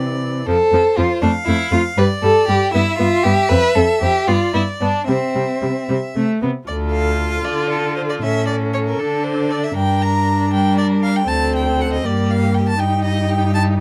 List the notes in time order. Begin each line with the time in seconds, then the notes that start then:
Already playing: C3 E3 D5
0.47 F2 F3 A4 C5
0.72 F2 F3
0.97 F2 F3 F4
1.22 F2 A3 D4 F5
1.46 F2 A3 E4
1.71 F2 A3 F4
1.97 G2 G3 B4 D5
2.22 G2 G3 A4
2.48 G2 G3 G4
2.72 G2 B3 E4 E5
2.98 G2 B3 F4
3.23 G2 B3 G4
3.49 F2 C4 B4
3.75 F2 C4 A4
4.02 F2 C4 G4
4.28 G2 B3 F4 D5
4.54 G2 B3 E4
4.81 G2 B3 D4
5.07 C3 G3 C4 E5
5.35 C3 G3
5.62 C3 G3
5.89 C3 G3
6.15 C3 A3
6.42 C3 B3
6.67 D2 F4 A4 D5
6.93 F5
7.45 D3 A4 D5
7.70 A4
7.96 C5
8.10 D5
8.23 A2 C#4 A4 E5
8.47 D5
8.74 C#5
8.88 A#4
8.99 D3 D4 A4
9.24 C5
9.51 D5
9.64 E5
9.75 G2 D4 A#4 G5
10.02 A#5
10.52 G3 A#4 G5
10.78 D5
11.03 F5
11.16 G5
11.28 D2 C4 A4 A5
11.55 G5
11.81 F#5
11.93 D#5
12.04 G2 A#3 G4 D5
12.31 F5
12.55 G5
12.69 A5
12.79 G2 D#4 G4 G5
13.04 D#5
13.29 G5
13.55 A5